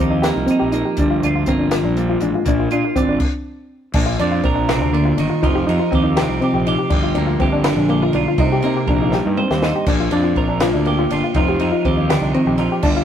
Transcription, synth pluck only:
0.00 C4
0.10 D#4
0.22 G4
0.35 D#4
0.46 C4
0.59 G4
0.72 D#4
0.85 G4
0.99 D4
1.10 F4
1.24 D4
1.36 F4
1.48 C4
1.59 D4
1.71 F4
1.85 D4
1.98 A#3
2.10 F4
2.22 D4
2.35 F4
2.48 D4
2.60 F4
2.73 D4
2.84 F4
2.96 C4
3.09 D4
3.95 D4
4.06 F4
4.20 D4
4.32 F4
4.44 C4
4.55 D4
4.69 F4
4.82 D4
4.93 A#3
5.05 F4
5.17 D4
5.30 F4
5.43 D#4
5.55 G4
5.67 D#4
5.79 F4
5.92 C4
6.03 D#4
6.16 G4
6.29 D#4
6.41 C4
6.54 G4
6.67 D#4
6.78 G4
6.90 D4
7.03 F4
7.15 D4
7.27 F4
7.40 C4
7.53 D4
7.66 F4
7.77 D4
7.89 A#3
8.03 F4
8.15 D4
8.28 F4
8.40 D#4
8.52 G4
8.65 D#4
8.76 G4
8.90 D4
9.02 D#4
9.14 G4
9.27 D#4
9.38 C4
9.51 G4
9.62 D#4
9.76 G4
9.87 D4
10.00 F4
10.12 D4
10.24 F4
10.37 C4
10.49 D4
10.62 F4
10.74 D4
10.86 A#3
10.99 F4
11.11 D4
11.24 F4
11.36 D#4
11.48 G4
11.61 D#4
11.72 F4
11.85 C4
11.97 D#4
12.10 G4
12.22 D#4
12.35 C4
12.47 G4
12.59 D#4
12.72 G4
12.83 D4
12.97 F4

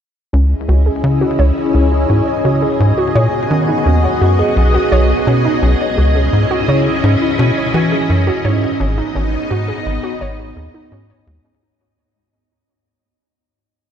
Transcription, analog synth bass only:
0.33 C#2
0.68 C#2
1.04 C#3
1.39 C#2
1.74 C#2
2.10 G#2
2.45 C#3
2.80 G#2
3.15 A#2
3.51 D#3
3.86 D#2
4.21 F#2
4.56 B1
4.92 B1
5.27 B2
5.62 B1
5.98 C#2
6.33 G#2
6.68 C#3
7.04 G#2
7.39 B2
7.74 E3
8.10 F#2
8.45 G#2
8.80 G#1
9.15 G#1
9.51 G#2
9.86 G#1
10.21 G#1
10.56 D#2
10.92 G#2
11.27 D#2

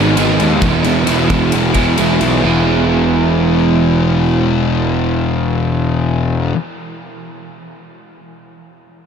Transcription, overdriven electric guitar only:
Already playing: G#3 B3 D#4
0.15 D#3 G#3 B3 D#4
0.61 E3 G#3 B3 E4
0.83 G#3 B3 E4
1.05 E3 G#3 B3 E4
1.27 B3 E4
1.31 G#3
1.74 G#3 B3 E4
1.97 E3 G#3 B3 E4
2.42 E3 B3 E4
2.47 G#4

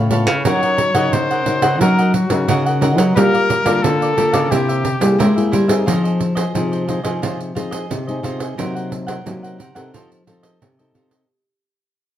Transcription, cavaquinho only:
Already playing: C#5 F5 B5
0.10 A4 C#5 F5 B5
0.28 C#5 F5
0.45 F#4 A#4 D#5 F#5
0.63 A#4 D#5 F#5
0.79 muted cavaquinho stroke
0.94 A#4 D#5 F#5
1.31 A#4 D#5 F#5
1.46 F#4 A#4 D#5 F#5
1.62 A#4 D#5 F#5
1.81 F#4 A#4 D#5 F#5
1.98 A#4 D#5 F#5
2.14 muted cavaquinho stroke
2.48 F#4 A#4 D#5 F#5
2.66 A#4 D#5 F#5
2.81 F#4 A#4 D#5 F#5
2.98 A#4 D#5 F#5
3.16 G4 A#4 D5 F5
3.33 A#4 D5 F5
3.50 muted cavaquinho stroke
3.65 A#4 D5 F5
4.01 A#4 D5 F5
4.17 G4 A#4 D5 F5
4.33 A#4 D5 F5
4.51 E4 A#4 C5 E5
4.69 A#4 C5 E5
4.84 muted cavaquinho stroke
5.18 E4 A#4 C5 E5
5.36 A#4 C5 E5
5.52 E4 A#4 C5 E5
5.68 A#4 C5 E5
5.86 F4 G#4 C5 D#5
6.04 G#4 C5 D#5
6.20 muted cavaquinho stroke
6.35 G#4 C5 D#5
6.72 G#4 C5 D#5
6.88 F4 G#4 C5 D#5
7.03 G#4 C5 D#5
7.22 F4 G#4 C5 D#5
7.40 muted cavaquinho stroke
7.55 F4 G#4 C5 D#5
7.71 G#4 C5 D#5
8.07 G#4 C5 D#5
8.23 F4 G#4 C5 D#5
8.39 G#4 C5 D#5
8.57 D#4 A#4 C5 F#5
8.75 A#4 C5 F#5
8.91 muted cavaquinho stroke
9.07 A#4 C5 F#5
9.43 A#4 C5 F#5
9.59 D#4 A#4 C5 F#5
9.75 A#4 C5 F#5
9.94 F4 A4 C5 D#5
10.11 muted cavaquinho stroke
10.27 F4 A4 C5 D#5
10.43 A4 C5 D#5
10.79 A4 C5 D#5
10.94 F4 A4 C5 D#5
11.11 A4 C5 D#5

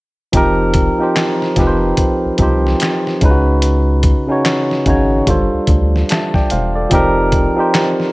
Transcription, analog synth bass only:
0.35 F1
1.58 F1
2.25 C2
2.40 C2
3.23 C#2
4.87 G#1
5.28 G1
5.54 D2
5.69 D2
6.53 E1
6.93 F1

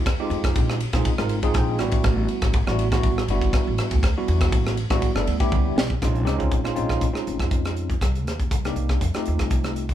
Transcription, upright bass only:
Already playing: D#2
0.30 F2
0.56 A#1
0.93 A#1
1.18 G#1
1.55 A#1
1.78 A1
2.05 A1
2.42 A1
2.67 A1
3.04 A1
3.28 G1
3.53 muted upright bass stroke
3.67 A1
3.91 D2
4.28 E2
4.53 A1
4.90 A1
5.15 G1
5.27 D2
5.52 C#2
5.76 B1
6.02 A#1
6.26 C#2
6.51 A#1
6.77 A#1
7.15 muted upright bass stroke
7.27 G#1
7.39 F2
8.01 C2
8.26 D#2
8.51 C2
8.76 C2
9.02 F2
9.16 muted upright bass stroke
9.28 D#2
9.40 C2

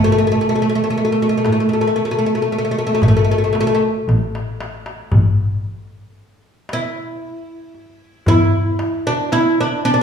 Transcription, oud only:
0.04 A3
0.12 A3
0.18 A3
0.27 A3
0.32 A3
0.41 A3
0.49 A3
0.55 A3
0.62 A3
0.69 A3
0.75 A3
0.84 A3
0.90 A3
0.98 A3
1.05 A3
1.12 A3
1.22 A3
1.29 A3
1.37 A3
1.45 A3
1.52 A3
1.60 A3
1.69 A3
1.73 A3
1.81 A3
1.87 A3
1.96 A3
2.05 A3
2.11 A3
2.19 A3
2.26 A3
2.35 A3
2.42 A3
2.52 A3
2.58 A3
2.65 A3
2.71 A3
2.79 A3
2.87 A3
2.95 A3
3.03 A3
3.08 A3
3.17 A3
3.24 A3
3.31 A3
3.38 A3
3.44 A3
3.53 A3
3.60 A3
3.67 A3
3.75 A3
6.73 E4
8.28 E4
9.07 D4
9.33 E4
9.61 D4
9.85 D4
9.94 D4

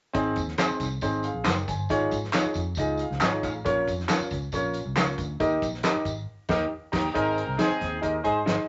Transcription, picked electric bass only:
0.15 G#1
0.36 D#2
0.69 muted picked electric bass stroke
0.80 C2
1.02 G#1
1.34 A#1
1.46 F#1
1.68 G1
1.90 G#1
2.12 G#2
2.44 muted picked electric bass stroke
2.56 F2
2.77 C#2
3.11 C#2
3.22 G#1
3.43 A1
3.65 A#1
3.87 F2
4.20 muted picked electric bass stroke
4.31 C#2
4.52 A#1
4.86 C2
4.97 C#2
5.18 D2
5.40 D#2
5.62 A#1
5.95 muted picked electric bass stroke
6.05 G#1
6.49 D#2
6.93 D#2
7.15 G#1
7.47 C2
7.70 muted picked electric bass stroke
7.81 D#2
8.03 D#2
8.25 G#2
8.47 G#1

